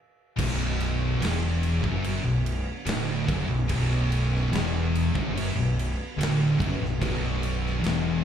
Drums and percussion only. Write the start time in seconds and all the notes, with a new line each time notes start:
0.39 kick, crash
0.80 crash
1.22 snare, crash
1.63 crash
1.84 kick
2.04 crash
2.46 crash
2.86 snare, crash
3.28 kick, crash
3.69 kick, crash
4.12 crash
4.35 snare
4.53 snare, crash
4.95 crash
5.15 kick
5.37 crash
5.79 crash
6.21 snare, crash
6.60 kick, crash
6.85 snare
7.02 kick, crash
7.43 crash
7.66 snare
7.84 snare, crash